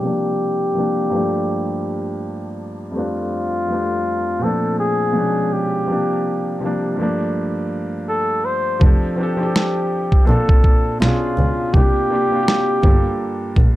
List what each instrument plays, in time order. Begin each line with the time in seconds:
Already playing: flugelhorn G4
0.01 felt piano C3 F3 G3
0.05 felt piano A#3 D4
0.73 felt piano C3 F3 G3
0.78 felt piano A#3 D4
1.10 felt piano G2 F3 A3
1.15 felt piano A#3 D4
2.91 felt piano F2 G3 A3
2.96 felt piano C4 D4, flugelhorn F4
3.67 felt piano F2 G3 A3
3.72 felt piano C4 D4
4.39 felt piano A#2 F3 A3
4.43 felt piano C4 D4, flugelhorn A4
4.79 flugelhorn G#4
5.12 felt piano B2 F3 G#3
5.17 felt piano C#4 D4
5.53 flugelhorn G4
5.85 felt piano C3 F3 G3
5.91 felt piano A#3 D4
6.59 felt piano C3 F3 G3
6.64 felt piano A#3 D4
6.96 felt piano G2 F3 A3
7.01 felt piano A#3 D4
8.09 flugelhorn A4
8.45 flugelhorn C5
8.80 double bass F1, felt piano F3 C4 D4, kick
8.85 felt piano G4 A4
9.16 felt piano F3 C4 D4, flugelhorn G4
9.21 felt piano G4 A4
9.37 felt piano F3 C4 D4
9.41 felt piano G4 A4
9.56 snare
10.12 kick
10.25 double bass A#1, felt piano A#2 C4 D4, flugelhorn A4
10.29 felt piano F4 A4
10.49 kick
10.64 kick
11.00 double bass B1, felt piano B2 C#4 D4, flugelhorn F4, snare
11.05 felt piano F4 G#4
11.38 double bass C#2
11.72 double bass C2, felt piano C3 A#3 D4, flugelhorn G4, kick
11.78 felt piano F4 G4
12.08 felt piano C3 A#3 D4
12.13 felt piano F4 G4
12.30 felt piano C3 A#3 D4
12.35 felt piano F4 F#4
12.43 felt piano G4
12.48 snare
12.82 double bass G1, felt piano G2 A#3 D4, kick
12.87 felt piano F4 A4
13.56 double bass A#1, kick